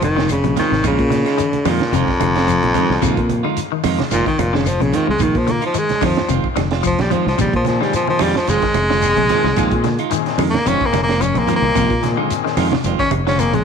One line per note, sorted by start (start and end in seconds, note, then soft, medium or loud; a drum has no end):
0.01 0.40 F1 medium
0.01 0.29 D#3 loud
0.01 closed hi-hat medium
0.01 high conga medium
0.01 claves medium
0.01 shekere soft
0.16 0.35 D3 medium
0.16 0.32 G#3 soft
0.16 0.32 C4 soft
0.16 0.32 F4 soft
0.16 snare medium
0.29 0.57 C#3 medium
0.29 closed hi-hat medium
0.29 claves medium
0.29 shekere medium
0.44 0.56 A#1 medium
0.44 0.63 C3 medium
0.44 closed hi-hat soft
0.44 high conga medium
0.56 0.74 D#3 medium
0.56 0.84 D#3 medium
0.56 0.74 G#3 medium
0.56 0.74 C4 medium
0.56 0.74 F4 medium
0.56 snare soft
0.56 closed hi-hat medium
0.56 low conga medium
0.56 shekere soft
0.70 0.83 G#1 medium
0.70 0.90 C3 medium
0.70 snare soft
0.83 0.98 A#1 loud
0.83 1.70 C#3 loud
0.83 1.01 D#3 medium
0.83 1.01 G#3 medium
0.83 1.01 D#4 medium
0.83 1.01 F4 medium
0.83 kick medium
0.83 closed hi-hat medium
0.83 low conga medium
0.83 claves medium
0.83 shekere medium
0.99 1.24 A#2 medium
0.99 kick medium
0.99 closed hi-hat soft
1.10 1.29 D3 medium
1.10 snare soft
1.10 closed hi-hat medium
1.10 high conga medium
1.10 shekere soft
1.25 1.42 G#3 soft
1.25 1.41 D#4 medium
1.25 1.41 F4 medium
1.25 snare soft
1.25 closed hi-hat soft
1.25 claves medium
1.38 1.57 D#3 medium
1.38 closed hi-hat medium
1.38 shekere medium
1.53 closed hi-hat soft
1.53 high conga medium
1.65 1.79 F2 medium
1.65 1.97 A#2 medium
1.65 1.85 D3 medium
1.65 1.83 D#3 medium
1.65 1.83 G#3 medium
1.65 1.83 F4 medium
1.65 muted clean electric guitar stroke medium
1.65 open hi-hat medium
1.65 high conga loud
1.65 claves medium
1.65 shekere soft
1.80 snare medium
1.80 closed hi-hat soft
1.80 high conga medium
1.92 2.06 F1 loud
1.92 3.54 F2 loud
1.92 2.12 C3 medium
1.92 2.10 D#3 medium
1.92 2.11 G#3 medium
1.92 2.11 C4 medium
1.92 2.11 F4 medium
1.92 closed hi-hat medium
1.92 shekere medium
2.08 kick medium
2.08 snare soft
2.20 2.59 F1 medium
2.20 2.39 D3 medium
2.20 closed hi-hat medium
2.20 high conga medium
2.20 claves medium
2.20 shekere soft
2.35 2.51 G#3 soft
2.35 2.51 C4 soft
2.35 2.51 F4 medium
2.35 snare medium
2.35 closed hi-hat soft
2.47 2.66 F3 medium
2.47 closed hi-hat medium
2.47 claves medium
2.47 shekere medium
2.63 2.74 A#1 medium
2.63 closed hi-hat soft
2.63 high conga medium
2.74 2.92 D#3 medium
2.74 2.94 F3 medium
2.74 2.92 G#3 medium
2.74 2.92 C4 medium
2.74 2.93 F4 medium
2.74 closed hi-hat soft
2.74 high conga medium
2.74 low conga medium
2.74 shekere soft
2.90 3.01 C2 medium
2.90 snare soft
3.02 3.16 A#1 medium
3.02 3.21 C3 medium
3.02 3.19 D#3 medium
3.02 3.20 G#3 medium
3.02 3.20 D#4 medium
3.02 3.20 F4 medium
3.02 kick medium
3.02 closed hi-hat medium
3.02 low conga medium
3.02 claves medium
3.02 shekere medium
3.17 3.42 A#2 medium
3.17 kick medium
3.17 closed hi-hat soft
3.29 closed hi-hat medium
3.29 high conga medium
3.29 shekere soft
3.43 3.63 D3 medium
3.43 3.60 G#3 medium
3.43 3.60 D#4 medium
3.43 3.59 F4 medium
3.43 claves medium
3.57 closed hi-hat medium
3.57 shekere medium
3.72 3.91 D#3 medium
3.84 3.98 F2 medium
3.84 4.01 D#3 medium
3.84 4.01 G#3 medium
3.84 4.02 D#4 medium
3.84 4.02 F4 medium
3.84 open hi-hat medium
3.84 high conga loud
3.84 claves medium
3.84 shekere soft
3.99 4.18 C3 medium
3.99 snare medium
3.99 high conga medium
4.11 4.25 F1 loud
4.11 4.26 A#2 loud
4.11 4.29 D#3 medium
4.11 4.29 G#3 medium
4.11 4.29 C4 medium
4.11 4.29 F4 medium
4.11 closed hi-hat medium
4.11 shekere medium
4.26 4.45 D#3 medium
4.26 4.41 D#3 medium
4.26 kick medium
4.26 closed hi-hat soft
4.38 4.77 F1 medium
4.38 4.57 A#2 medium
4.38 closed hi-hat medium
4.38 high conga medium
4.38 claves medium
4.38 shekere soft
4.53 4.69 C#3 medium
4.53 4.72 D3 medium
4.53 4.69 G#3 soft
4.53 4.69 C4 soft
4.53 4.69 F4 medium
4.53 snare medium
4.66 4.83 F3 medium
4.66 closed hi-hat medium
4.66 claves medium
4.66 shekere medium
4.80 4.92 A#1 medium
4.80 4.99 C3 medium
4.80 4.97 C#3 medium
4.80 closed hi-hat soft
4.80 high conga medium
4.93 5.10 D#3 medium
4.93 5.08 D#3 medium
4.93 5.11 G#3 medium
4.93 5.11 C4 medium
4.93 5.11 F4 medium
4.93 closed hi-hat medium
4.93 low conga medium
4.93 shekere soft
5.07 5.20 C2 medium
5.07 5.26 C3 medium
5.07 5.24 G#3 medium
5.19 5.34 A#1 loud
5.19 5.37 D#3 medium
5.19 5.39 D#3 medium
5.19 5.38 G#3 medium
5.19 5.38 D#4 medium
5.19 muted clean electric guitar stroke medium
5.19 kick medium
5.19 closed hi-hat medium
5.19 low conga medium
5.19 claves medium
5.19 shekere medium
5.35 5.60 A#2 loud
5.35 5.52 F3 medium
5.35 kick medium
5.35 closed hi-hat soft
5.47 5.66 D3 medium
5.47 closed hi-hat medium
5.47 high conga medium
5.47 shekere soft
5.51 5.63 A#3 medium
5.61 5.77 D#4 medium
5.61 5.77 F4 medium
5.61 closed hi-hat soft
5.61 claves medium
5.66 5.80 F3 medium
5.74 5.94 D#3 medium
5.74 6.06 G#3 medium
5.74 closed hi-hat medium
5.74 shekere medium
5.89 snare soft
5.89 closed hi-hat soft
5.89 high conga medium
6.01 6.16 F2 medium
6.01 6.20 D3 medium
6.01 6.19 D#3 medium
6.01 6.30 F3 medium
6.01 6.20 D#4 medium
6.01 6.20 F4 medium
6.01 muted clean electric guitar stroke medium
6.01 kick medium
6.01 open hi-hat medium
6.01 high conga medium
6.01 claves medium
6.01 shekere soft
6.16 snare medium
6.16 closed hi-hat soft
6.16 low conga medium
6.28 6.43 F1 medium
6.28 6.48 C3 medium
6.28 6.47 D#3 medium
6.28 6.47 G#3 medium
6.28 6.47 C4 medium
6.28 6.47 F4 medium
6.28 closed hi-hat medium
6.28 shekere loud
6.44 muted fingered electric bass stroke soft
6.44 kick medium
6.56 6.95 F1 medium
6.56 6.75 D3 medium
6.56 snare soft
6.56 closed hi-hat soft
6.56 high conga loud
6.56 claves medium
6.56 shekere soft
6.71 6.87 G#3 soft
6.71 6.87 C4 soft
6.71 6.87 F4 soft
6.71 snare medium
6.71 closed hi-hat soft
6.83 7.02 F3 medium
6.83 7.03 F3 medium
6.83 kick medium
6.83 closed hi-hat medium
6.83 claves medium
6.83 shekere medium
6.99 7.10 A#1 medium
6.99 7.14 G3 medium
6.99 snare medium
6.99 closed hi-hat soft
6.99 high conga medium
7.10 7.28 D#3 medium
7.10 7.29 F3 medium
7.10 7.26 F3 medium
7.10 7.28 G#3 medium
7.10 7.29 C4 medium
7.10 7.29 F4 medium
7.10 closed hi-hat soft
7.10 low conga medium
7.10 shekere soft
7.27 7.38 C2 medium
7.27 7.39 F3 medium
7.27 snare soft
7.38 7.52 A#1 medium
7.38 7.57 C3 medium
7.38 7.56 D#3 medium
7.38 7.54 G3 medium
7.38 7.56 G#3 medium
7.38 7.56 D#4 medium
7.38 muted clean electric guitar stroke medium
7.38 kick medium
7.38 closed hi-hat medium
7.38 low conga medium
7.38 claves medium
7.38 shekere medium
7.53 7.78 A#2 medium
7.53 7.66 F3 medium
7.53 kick medium
7.53 closed hi-hat soft
7.64 8.31 A#2 medium
7.64 8.31 D#3 medium
7.64 7.84 F3 medium
7.64 8.32 G#3 medium
7.64 8.32 C4 medium
7.64 snare soft
7.64 closed hi-hat soft
7.64 high conga medium
7.64 shekere soft
7.81 8.00 D3 medium
7.81 7.93 G3 medium
7.81 7.97 G#3 soft
7.81 7.96 D#4 soft
7.81 7.96 F4 soft
7.81 snare soft
7.81 claves medium
7.93 8.08 F3 medium
7.93 closed hi-hat medium
7.93 shekere medium
8.07 8.27 D#3 medium
8.07 8.24 F3 loud
8.07 high conga medium
8.19 8.34 F2 medium
8.19 8.38 D#3 medium
8.19 8.35 G3 medium
8.19 8.38 G#3 medium
8.19 8.38 D#4 medium
8.19 8.38 F4 medium
8.19 open hi-hat medium
8.19 high conga loud
8.19 claves medium
8.19 shekere soft
8.34 8.51 F3 loud
8.34 muted clean electric guitar stroke medium
8.34 snare medium
8.34 low conga medium
8.47 8.61 F1 loud
8.47 8.65 D#3 medium
8.47 8.65 G#3 medium
8.47 10.08 G#3 loud
8.47 8.65 C4 medium
8.47 8.66 F4 medium
8.47 snare soft
8.47 closed hi-hat medium
8.47 shekere medium
8.62 8.81 D#3 medium
8.62 kick medium
8.62 snare soft
8.62 closed hi-hat soft
8.74 9.14 F1 medium
8.74 closed hi-hat medium
8.74 high conga medium
8.74 claves medium
8.74 shekere soft
8.90 9.09 D3 medium
8.90 9.06 G#3 soft
8.90 9.05 C4 medium
8.90 9.05 F4 soft
8.90 snare medium
9.01 9.19 A#2 medium
9.01 9.19 D#3 medium
9.01 9.19 G#3 medium
9.01 9.20 C4 medium
9.01 closed hi-hat medium
9.01 claves medium
9.01 shekere medium
9.16 9.28 A#1 medium
9.16 9.36 C3 medium
9.16 closed hi-hat soft
9.16 high conga medium
9.28 9.46 A#2 medium
9.28 9.46 D#3 medium
9.28 9.47 D#3 medium
9.28 9.47 G#3 medium
9.28 9.47 C4 medium
9.28 9.47 D#4 loud
9.28 9.47 F4 medium
9.28 snare soft
9.28 closed hi-hat medium
9.28 low conga medium
9.28 shekere soft
9.44 9.56 C2 medium
9.44 9.63 C3 medium
9.44 snare soft
9.55 9.71 A#1 medium
9.55 9.89 A#2 medium
9.55 9.89 D#3 medium
9.55 9.74 D#3 medium
9.55 9.89 G#3 medium
9.55 9.74 G#3 medium
9.55 9.90 C4 medium
9.55 9.74 D#4 medium
9.55 9.75 F4 medium
9.55 kick medium
9.55 snare soft
9.55 closed hi-hat medium
9.55 low conga medium
9.55 claves medium
9.55 shekere medium
9.71 9.97 A#2 loud
9.71 kick medium
9.71 closed hi-hat soft
9.84 10.03 D3 medium
9.84 snare soft
9.84 closed hi-hat medium
9.84 high conga medium
9.84 shekere soft
9.98 10.15 G#3 soft
9.98 10.15 D#4 medium
9.98 10.14 F4 medium
9.98 closed hi-hat soft
9.98 claves medium
10.10 10.44 A#2 medium
10.10 10.44 D#3 medium
10.10 10.30 D#3 medium
10.10 10.44 G#3 medium
10.10 10.44 C4 loud
10.10 closed hi-hat medium
10.10 shekere medium
10.26 snare soft
10.26 closed hi-hat soft
10.38 10.52 F2 medium
10.38 10.58 D3 medium
10.38 10.56 D#3 medium
10.38 10.56 G#3 medium
10.38 10.56 D#4 medium
10.38 open hi-hat medium
10.38 high conga loud
10.38 claves medium
10.38 shekere soft
10.50 10.69 A#3 loud
10.50 closed hi-hat soft
10.50 high conga medium
10.50 low conga medium
10.55 snare medium
10.64 10.80 F1 loud
10.64 11.07 A#2 medium
10.64 10.85 C3 medium
10.64 11.07 D#3 medium
10.64 10.83 D#3 medium
10.64 11.07 G#3 medium
10.64 10.83 G#3 medium
10.64 11.08 C4 medium
10.64 10.83 C4 medium
10.64 10.84 F4 medium
10.64 closed hi-hat medium
10.64 shekere medium
10.68 10.88 C#4 loud
10.81 muted fingered electric bass stroke soft
10.81 kick medium
10.86 11.03 A#3 medium
10.93 11.32 F1 medium
10.93 11.12 D3 medium
10.93 snare soft
10.93 closed hi-hat medium
10.93 high conga medium
10.93 claves medium
10.93 shekere soft
11.03 11.23 A#3 medium
11.08 11.24 G#3 soft
11.08 11.24 C4 soft
11.08 11.24 F4 medium
11.08 snare medium
11.08 closed hi-hat soft
11.21 11.40 F3 medium
11.21 11.40 C#4 medium
11.21 closed hi-hat medium
11.21 claves medium
11.21 shekere medium
11.34 11.47 A#1 medium
11.34 11.50 A#2 medium
11.34 11.50 D#3 medium
11.34 11.51 G#3 medium
11.34 11.51 C4 medium
11.34 closed hi-hat soft
11.34 high conga medium
11.39 11.55 A#3 medium
11.47 11.65 D#3 medium
11.47 11.67 F3 medium
11.47 11.65 G#3 medium
11.47 11.65 C4 medium
11.47 11.66 F4 medium
11.47 closed hi-hat medium
11.47 low conga medium
11.47 shekere soft
11.56 12.09 A#3 loud
11.61 11.74 C2 medium
11.61 11.74 A#2 medium
11.61 11.75 D#3 medium
11.61 11.75 G#3 medium
11.61 11.75 C4 medium
11.75 11.89 A#1 loud
11.75 11.94 C3 medium
11.75 11.92 D#3 medium
11.75 11.93 G#3 medium
11.75 11.93 D#4 medium
11.75 11.93 F4 medium
11.75 kick medium
11.75 snare soft
11.75 closed hi-hat medium
11.75 low conga medium
11.75 claves medium
11.75 shekere medium
11.90 12.15 A#2 loud
11.90 kick medium
11.90 closed hi-hat soft
12.01 12.68 A#2 medium
12.01 12.68 D#3 medium
12.01 12.68 G#3 medium
12.01 12.69 C4 medium
12.01 snare soft
12.01 closed hi-hat soft
12.01 high conga medium
12.01 shekere soft
12.17 12.36 D3 medium
12.17 12.33 G#3 soft
12.17 12.33 D#4 soft
12.17 12.33 F4 medium
12.17 claves medium
12.30 closed hi-hat medium
12.30 shekere medium
12.45 12.63 D#3 medium
12.45 snare soft
12.57 12.71 F2 medium
12.57 12.74 D#3 medium
12.57 12.75 G#3 medium
12.57 12.75 D#4 medium
12.57 12.75 F4 medium
12.57 open hi-hat medium
12.57 high conga medium
12.57 claves medium
12.57 shekere soft
12.72 12.91 C3 medium
12.72 snare medium
12.72 high conga medium
12.72 low conga medium
12.84 12.98 F1 loud
12.84 13.02 D#3 medium
12.84 13.02 G#3 medium
12.84 13.02 C4 medium
12.84 13.02 F4 medium
12.84 closed hi-hat medium
12.84 shekere medium
12.99 13.18 D#3 medium
12.99 13.11 C#4 loud
12.99 kick medium
12.99 snare soft
12.99 closed hi-hat soft
13.11 13.50 F1 medium
13.11 closed hi-hat soft
13.11 high conga medium
13.11 claves medium
13.11 shekere soft
13.27 13.46 D3 medium
13.27 13.43 G#3 soft
13.27 13.42 C4 soft
13.27 13.41 C#4 medium
13.27 13.42 F4 soft
13.27 snare medium
13.38 13.56 A#2 medium
13.38 13.56 D#3 medium
13.38 13.56 G#3 medium
13.38 13.56 A#3 loud
13.38 13.56 C4 medium
13.38 closed hi-hat medium
13.38 claves medium
13.38 shekere medium
13.53 13.64 A#1 medium
13.53 13.64 C3 medium
13.53 13.64 G#3 medium
13.53 closed hi-hat soft
13.53 high conga medium